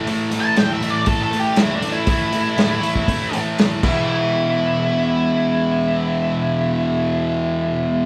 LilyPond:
<<
  \new Staff \with { instrumentName = "Lead electric guitar" } { \time 4/4 \key a \dorian \tempo 4 = 119 \tuplet 3/2 { r4 a''8 g''8 e''8 d''8 a'8 a'8 g'8 e'8 d'8 e'8~ } | e'2~ e'8 r4 e'8~ | e'1~ | e'1 | }
  \new Staff \with { instrumentName = "Distorted electric guitar" } { \clef bass \time 4/4 \key a \dorian <a, e a>8 <a, e a>8 <a, e a>8 <a, e a>8 <a, e a>8 <a, e a>8 <a, e a>8 <a, e a>8 | <a, e a>8 <a, e a>8 <a, e a>8 <a, e a>8 <a, e a>8 <a, e a>8 <a, e a>8 <e, b, e>8~ | <e, b, e>1~ | <e, b, e>1 | }
  \new DrumStaff \with { instrumentName = "Drums" } \drummode { \time 4/4 hho8 hho8 <hho sn>8 hho8 <hho bd>8 hho8 <hho sn>8 hho8 | <hho bd>8 hho8 <hho sn>8 hho16 bd16 <hho bd>8 hho8 <hho sn>8 <cymc bd>8 | r4 r4 r4 r4 | r4 r4 r4 r4 | }
>>